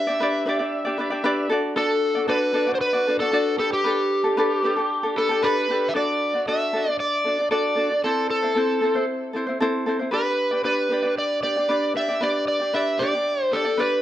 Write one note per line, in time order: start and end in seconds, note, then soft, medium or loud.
0.00 1.48 E5 medium
0.07 0.20 D4 soft
0.07 0.21 G4 soft
0.07 0.20 D5 medium
0.20 0.46 D4 medium
0.20 0.47 G4 medium
0.20 0.45 B4 medium
0.20 0.45 D5 medium
0.46 0.60 D4 medium
0.46 0.60 G4 medium
0.46 0.49 B4 medium
0.46 0.58 D5 medium
0.59 0.87 D4 soft
0.59 0.85 G4 medium
0.59 0.84 D5 medium
0.85 0.98 D4 soft
0.85 0.98 G4 medium
0.85 0.99 D5 medium
0.98 1.12 D4 medium
0.98 1.11 G4 medium
0.98 1.12 B4 medium
0.98 1.09 D5 medium
1.10 1.23 D4 medium
1.10 1.24 G4 medium
1.10 1.24 D5 medium
1.24 1.49 D4 medium
1.24 1.51 G4 loud
1.24 1.49 B4 medium
1.24 1.51 D5 loud
1.49 1.75 D4 medium
1.49 1.76 F#4 medium
1.49 1.75 A4 medium
1.49 1.77 D5 medium
1.76 2.16 D4 medium
1.76 2.15 F#4 medium
1.76 2.16 A4 medium
1.76 2.26 A4 medium
1.76 2.14 D5 medium
2.15 2.27 D4 soft
2.15 2.28 F#4 soft
2.15 2.28 D5 soft
2.28 2.53 D4 medium
2.28 2.54 F#4 medium
2.28 2.52 A4 medium
2.28 2.75 B4 loud
2.28 2.55 D5 medium
2.54 2.68 D4 medium
2.54 2.67 F#4 medium
2.54 2.68 A4 medium
2.54 2.65 D5 medium
2.67 2.94 D4 soft
2.67 2.93 F#4 medium
2.67 2.92 D5 medium
2.75 2.81 C5 medium
2.81 3.18 B4 loud
2.93 3.07 D4 soft
2.93 3.08 F#4 medium
2.93 3.07 D5 medium
3.07 3.21 D4 medium
3.07 3.20 F#4 medium
3.07 3.20 A4 medium
3.07 3.19 D5 medium
3.20 3.32 D4 soft
3.20 3.32 F#4 soft
3.20 3.58 A4 loud
3.20 3.33 D5 medium
3.32 3.58 D4 medium
3.32 3.60 F#4 medium
3.32 3.57 A4 medium
3.32 3.59 D5 medium
3.58 3.84 D4 medium
3.58 3.84 G4 medium
3.58 3.73 A4 medium
3.58 3.85 A4 medium
3.58 3.83 B4 medium
3.73 5.39 G4 medium
3.84 4.25 D4 medium
3.84 4.24 G4 medium
3.84 4.23 A4 medium
3.84 4.24 B4 medium
4.24 4.36 D4 soft
4.24 4.37 G4 soft
4.24 4.38 A4 soft
4.37 4.63 D4 medium
4.37 4.64 G4 loud
4.37 4.63 A4 medium
4.37 4.62 B4 medium
4.63 4.77 D4 medium
4.63 4.77 G4 medium
4.63 4.75 A4 medium
4.63 4.76 B4 medium
4.76 5.05 D4 soft
4.76 5.03 G4 soft
4.76 5.02 A4 medium
5.03 5.16 D4 soft
5.03 5.16 G4 soft
5.03 5.16 A4 medium
5.16 5.30 D4 medium
5.16 5.30 G4 medium
5.16 5.44 A4 medium
5.16 5.28 A4 medium
5.16 5.30 B4 medium
5.29 5.42 D4 medium
5.29 5.43 G4 medium
5.29 5.42 A4 medium
5.42 5.69 D4 medium
5.42 5.69 G4 medium
5.42 5.68 A4 loud
5.42 5.67 B4 medium
5.42 5.90 B4 medium
5.69 5.94 D4 medium
5.69 5.94 G4 medium
5.69 5.93 A4 medium
5.69 5.95 B4 medium
5.89 5.95 E5 medium
5.94 6.34 D4 medium
5.94 6.34 F#4 medium
5.94 6.34 A4 medium
5.94 6.33 D5 medium
5.94 6.48 D5 medium
6.34 6.47 D4 soft
6.34 6.47 F#4 soft
6.34 6.47 D5 soft
6.47 6.73 D4 medium
6.47 6.74 F#4 medium
6.47 6.72 A4 medium
6.47 6.73 D5 medium
6.47 7.00 E5 medium
6.73 6.87 D4 soft
6.73 6.86 F#4 medium
6.73 6.86 A4 soft
6.73 6.85 D5 medium
6.86 7.25 D4 soft
6.86 7.25 D5 soft
7.00 7.51 D5 medium
7.25 7.39 D4 soft
7.25 7.39 F#4 soft
7.25 7.38 A4 soft
7.25 7.37 D5 soft
7.38 7.50 D4 soft
7.38 7.50 D5 soft
7.51 7.76 D4 medium
7.51 7.77 F#4 medium
7.51 7.74 A4 medium
7.51 8.00 D5 medium
7.51 7.75 D5 medium
7.76 7.90 D4 medium
7.76 7.91 F#4 medium
7.76 7.90 A4 medium
7.76 7.89 D5 medium
7.90 8.04 D4 soft
7.90 8.04 D5 soft
8.04 8.44 C4 medium
8.04 8.43 E4 medium
8.04 8.42 A4 medium
8.04 8.29 A4 medium
8.04 8.41 C5 medium
8.30 9.05 A4 medium
8.42 8.55 C4 soft
8.42 8.55 E4 soft
8.42 8.55 C5 soft
8.55 8.82 C4 medium
8.55 8.82 E4 medium
8.55 8.80 A4 medium
8.55 8.83 C5 medium
8.81 8.96 C4 medium
8.81 8.95 E4 medium
8.81 8.95 A4 medium
8.81 8.94 C5 medium
8.95 9.33 C4 soft
8.95 9.34 E4 soft
8.95 9.33 C5 medium
9.33 9.48 C4 medium
9.33 9.47 E4 medium
9.33 9.46 A4 medium
9.33 9.45 C5 medium
9.47 9.59 C4 soft
9.47 9.61 E4 soft
9.47 9.60 C5 soft
9.60 9.86 C4 medium
9.60 9.87 E4 medium
9.60 9.85 A4 medium
9.60 9.88 C5 medium
9.86 10.00 C4 medium
9.86 10.00 E4 medium
9.86 9.99 A4 medium
9.86 9.98 C5 medium
9.99 10.12 C4 soft
9.99 10.12 E4 soft
9.99 10.13 C5 soft
10.11 10.52 D4 medium
10.11 10.51 G4 medium
10.11 10.51 B4 medium
10.11 10.64 B4 medium
10.11 10.50 D5 medium
10.51 10.63 D4 soft
10.51 10.64 G4 soft
10.51 10.65 D5 soft
10.63 10.89 D4 medium
10.63 10.91 G4 medium
10.63 10.88 B4 medium
10.63 11.18 B4 medium
10.63 10.89 D5 medium
10.90 11.04 D4 medium
10.90 11.04 G4 medium
10.90 10.92 B4 soft
10.90 11.01 D5 medium
11.02 11.42 D4 soft
11.02 11.43 G4 soft
11.02 11.42 D5 soft
11.18 11.42 D5 medium
11.42 11.57 D4 soft
11.42 11.56 G4 medium
11.42 11.45 B4 soft
11.42 11.92 D5 loud
11.42 11.55 D5 medium
11.56 11.68 D4 soft
11.56 11.69 G4 soft
11.56 11.70 D5 soft
11.69 11.95 D4 medium
11.69 11.96 G4 medium
11.69 11.93 B4 medium
11.69 11.94 D5 medium
11.95 12.09 D4 medium
11.95 12.09 G4 medium
11.95 11.98 B4 medium
11.95 12.07 D5 medium
11.95 12.23 E5 medium
12.08 12.21 D4 soft
12.08 12.21 G4 soft
12.08 12.22 D5 soft
12.21 12.61 D4 medium
12.21 12.60 G4 medium
12.21 12.61 B4 medium
12.21 12.47 D5 medium
12.21 12.58 D5 medium
12.48 12.73 D5 medium
12.60 12.73 D4 soft
12.60 12.74 G4 soft
12.60 12.74 D5 soft
12.73 13.00 D4 medium
12.73 13.01 G4 medium
12.73 12.99 B4 medium
12.73 13.00 D5 medium
12.73 13.01 E5 medium
12.99 13.14 D4 medium
12.99 13.14 G4 medium
12.99 13.03 B4 soft
12.99 13.43 D5 medium
12.99 13.12 D5 medium
13.13 13.52 D4 soft
13.13 13.53 G4 soft
13.13 13.52 D5 soft
13.43 13.54 C5 medium
13.52 13.66 D4 soft
13.52 13.66 G4 medium
13.52 13.80 A4 medium
13.52 13.55 B4 soft
13.52 13.63 D5 soft
13.65 13.77 D4 soft
13.65 13.78 G4 soft
13.65 13.78 D5 soft
13.77 14.02 D4 medium
13.77 14.02 G4 medium
13.77 14.02 B4 medium
13.77 14.02 D5 medium